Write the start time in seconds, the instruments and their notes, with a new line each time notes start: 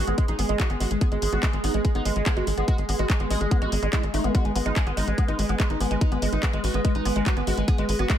Already playing: synth texture G#3 G#4, downlifter
0.08 analog synth bass G#1, analog synth lead G#3, synth arpeggio sound B3, closed hi-hat
0.18 synth arpeggio sound G#3, analog synth lead G#3, kick, closed hi-hat
0.28 analog synth bass A1, analog synth lead D#4, closed hi-hat
0.39 analog synth bass G#1, analog synth lead G#3, synth arpeggio sound B3, open hi-hat
0.49 analog synth bass G#1, synth arpeggio sound G#3, analog synth lead G#3, closed hi-hat
0.60 analog synth lead F#4, kick, clap, closed hi-hat
0.70 analog synth bass G#1, analog synth lead G#3, synth arpeggio sound B3, closed hi-hat
0.80 analog synth bass G#1, synth arpeggio sound G#3, analog synth lead F#4, open hi-hat
0.91 analog synth bass G#1, analog synth lead G#3, closed hi-hat
1.01 synth arpeggio sound B3, analog synth lead G#4, kick, closed hi-hat
1.12 analog synth bass G#1, analog synth lead G#3, synth arpeggio sound G#3, closed hi-hat
1.22 analog synth bass G#1, analog synth lead G#3, open hi-hat
1.33 analog synth bass G#1, synth arpeggio sound B3, analog synth lead F#4
1.43 analog synth lead G#3, synth arpeggio sound G#3, kick, clap, closed hi-hat
1.53 analog synth bass G#1, analog synth lead G#3, closed hi-hat
1.64 analog synth bass G#1, synth arpeggio sound B3, analog synth lead D#4, open hi-hat
1.74 analog synth bass A1, analog synth lead G#3, synth arpeggio sound G#3, closed hi-hat
1.85 analog synth lead G#3, kick, closed hi-hat
1.95 analog synth bass G#1, synth arpeggio sound B3, analog synth lead D#4, closed hi-hat
2.05 analog synth bass G#1, analog synth lead G#3, synth arpeggio sound G#3, open hi-hat
2.16 analog synth bass G#1, analog synth lead G#3, closed hi-hat
2.26 analog synth lead G#3, synth arpeggio sound B3, kick, clap, closed hi-hat
2.37 analog synth bass G#1, synth arpeggio sound G#3, analog synth lead F#4, closed hi-hat
2.47 analog synth bass G#1, analog synth lead G#3, open hi-hat
2.58 analog synth bass G#1, analog synth lead G#3, synth arpeggio sound B3, closed hi-hat
2.68 synth arpeggio sound G#3, analog synth lead F#4, kick, closed hi-hat
2.78 analog synth bass G#1, analog synth lead G#3, closed hi-hat
2.89 analog synth bass G#1, analog synth lead G#3, synth arpeggio sound B3, open hi-hat
2.99 analog synth bass G#1, synth arpeggio sound G#3, analog synth lead F#4, closed hi-hat
3.10 analog synth lead G#3, kick, clap, closed hi-hat
3.20 analog synth bass G#1, analog synth lead G#3, synth arpeggio sound B3, closed hi-hat
3.30 analog synth bass A1, synth arpeggio sound G#3, analog synth lead G#4, open hi-hat
3.41 analog synth bass G#1, analog synth lead G#3, closed hi-hat
3.51 analog synth lead G#3, synth arpeggio sound B3, kick, closed hi-hat
3.62 analog synth bass A1, synth arpeggio sound G#3, analog synth lead F#4, closed hi-hat
3.72 analog synth bass G#1, analog synth lead G#3, open hi-hat
3.83 analog synth bass G#1, analog synth lead G#3, synth arpeggio sound G#3, closed hi-hat
3.93 synth arpeggio sound G#3, analog synth lead E4, kick, clap, closed hi-hat
4.03 analog synth bass G#1, analog synth lead G#3, closed hi-hat
4.14 analog synth bass G#1, synth arpeggio sound A3, analog synth lead D#4, open hi-hat
4.24 analog synth bass G#1, analog synth lead G#3, synth arpeggio sound B3, closed hi-hat
4.35 synth arpeggio sound G#3, analog synth lead F#4, synth texture B4, kick, closed hi-hat
4.45 analog synth bass G#1, analog synth lead G#3, closed hi-hat
4.55 analog synth bass G#1, analog synth lead G#3, synth arpeggio sound B3, open hi-hat
4.66 analog synth bass G#1, synth arpeggio sound G#3, analog synth lead D#4, closed hi-hat
4.76 analog synth lead G#3, kick, clap, closed hi-hat
4.87 analog synth bass G#1, analog synth lead G#3, synth arpeggio sound B3, closed hi-hat
4.97 analog synth bass G#1, synth arpeggio sound G#3, analog synth lead D#4, open hi-hat
5.07 analog synth bass A1, analog synth lead G#3, closed hi-hat
5.18 analog synth lead G#3, synth arpeggio sound B3, kick, closed hi-hat
5.28 analog synth bass G#1, synth arpeggio sound G#3, analog synth lead D#4, closed hi-hat
5.39 analog synth bass G#1, analog synth lead G#3, open hi-hat
5.49 analog synth bass G#1, analog synth lead G#3, synth arpeggio sound B3, closed hi-hat
5.60 analog synth lead G#3, synth arpeggio sound G#3, kick, clap, closed hi-hat
5.70 analog synth bass G#1, analog synth lead D#4, closed hi-hat
5.80 analog synth bass G#1, analog synth lead G#3, synth arpeggio sound B3, open hi-hat
5.91 analog synth bass G#1, analog synth lead G#3, synth arpeggio sound G#3, closed hi-hat
6.01 analog synth lead D#4, kick, closed hi-hat
6.12 analog synth bass G#1, analog synth lead G#3, synth arpeggio sound B3, closed hi-hat
6.22 analog synth bass G#1, analog synth lead G#3, synth arpeggio sound G#3, open hi-hat
6.32 analog synth bass G#1, analog synth lead D#4, closed hi-hat
6.43 analog synth lead G#3, synth arpeggio sound B3, kick, clap, closed hi-hat
6.53 analog synth bass G#1, analog synth lead G#3, synth arpeggio sound G#3, closed hi-hat
6.64 analog synth bass A1, analog synth lead F#4, open hi-hat
6.74 analog synth bass G#1, analog synth lead G#3, synth arpeggio sound B3, closed hi-hat
6.85 analog synth lead G#3, synth arpeggio sound G#3, kick, closed hi-hat
6.95 analog synth bass A1, analog synth lead D#4, closed hi-hat
7.05 analog synth bass G#1, analog synth lead G#3, synth arpeggio sound B3, open hi-hat
7.16 analog synth bass G#1, analog synth lead G#3, synth arpeggio sound G#3, closed hi-hat
7.26 analog synth lead F#4, kick, clap, closed hi-hat
7.37 analog synth bass G#1, analog synth lead G#3, synth arpeggio sound B3, closed hi-hat
7.47 analog synth bass G#1, synth arpeggio sound G#3, analog synth lead F#4, open hi-hat
7.58 analog synth bass G#1, analog synth lead G#3, closed hi-hat
7.68 synth arpeggio sound B3, analog synth lead G#4, kick, closed hi-hat
7.78 analog synth bass G#1, synth arpeggio sound G#3, analog synth lead G#3, closed hi-hat
7.89 analog synth bass G#1, analog synth lead G#3, open hi-hat
7.99 analog synth bass G#1, synth arpeggio sound B3, analog synth lead F#4, closed hi-hat
8.10 synth arpeggio sound G#3, analog synth lead G#3, kick, clap, closed hi-hat